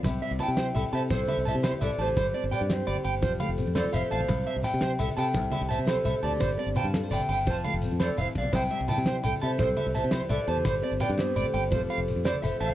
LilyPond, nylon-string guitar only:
\new Staff \with { instrumentName = "Nylon-string guitar" } { \time 12/8 \key c \major \tempo 4. = 113 << { <c' a'>4 e'8 g'8 a'8 g'4. e'8 g'8 a'8 g'8 | r4 g'8 g'8 g'8 g'8 r4 c'8 f'8 a'8 f'8 | r4 c'8 g'8 a'8 g'4. c'8 g'8 a'4 | r4 g'8 a'16 c''16 c''8 c''8 r4 c'2~ |
c'4 e'8 g'8 a'8 g'4. e'8 g'8 a'8 g'8 | r4 g'2 <a c' f' a'>4 c'8 f'8 a'8 f'8 | } \\ { c8 g2~ g8 c8 g2~ g8 | g8 c'2~ c'8 f8 a2~ a8 | c8 g2~ g8 c8 g2~ g8 | g8 c'2~ c'8 f8 a4 f8 e8 d8 |
c8 g2. g2~ g8 | g8 c'4 b8 a8 g8 f8 a2~ a8 | } >> }